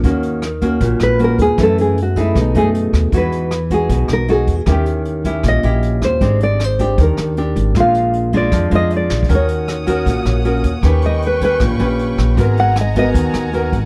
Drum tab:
HH |x--x--x--x--x--x--x--x--|x--x--x--x--x--x--x--x--|x--x--x--x--x--x--x--x--|x--x--x--x--x--x--x--x--|
SD |------r--------r--------|r-----------r--------r--|------r--------r--------|r-----------r--------r--|
BD |o--------o--o--------o--|o--------o--o--------o--|o--------o--o--------o--|o--------o--o--------o--|

HH |x--x--x--x--x--x--x--x--|x--x--x--x--x--x--x-----|x--x--x--x--x--x--x--x--|x--x--x--x--x--x--x--x--|
SD |------r--------r--------|r-----------r--------o--|------r--------r--------|r-----------r--------r--|
BD |o--------o--o--------o--|o--------o--o----------o|o--------o--o--------o--|o--------o--o--------o--|

HH |x--x--x--x--x--x--x--x--|
SD |------r--------r--------|
BD |o--------o--o--------o--|